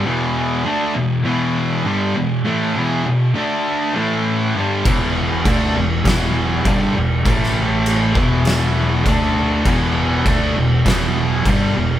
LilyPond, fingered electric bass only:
\new Staff \with { instrumentName = "Fingered electric bass" } { \clef bass \time 4/4 \key e \minor \tempo 4 = 100 r1 | r1 | e,,4 d,8 e,,8 e,,4 g,,8 e,,8 | a,,4. e,,4. d,4 |
e,,4 d,8 e,,8 e,,4 g,,8 e,,8 | }